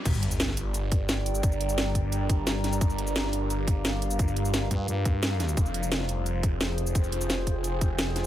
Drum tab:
CC |x---------------|----------------|----------------|----------------|
HH |x-x-x-x-x-x-x-x-|x-x-x-x-x-x-x-x-|x-x-x-x-x-x-x-x-|x-x-x-x-x-x-x-x-|
SH |xx-xx-x-x-x-x-xx|xx-xx-x-x-x-x-xx|xx-xx-x-x-x-x-xx|xx-xx-x-x-x-x-xx|
SD |----oo------o---|----o-------o-o-|----oo------o---|----o-------o-o-|
BD |o---------o-----|o-----o---o-----|o---------o-----|o-----o---o-----|

CC |----------------|----------------|
HH |x-x-x-x-x-x-x-x-|x-x-x-x-x-x-x-x-|
SH |xx-xx-x-x-x-x-xx|xx-xx-x-x-x-x-x-|
SD |----oo------o---|----o-------o-o-|
BD |o---------o-----|o-----o---o-----|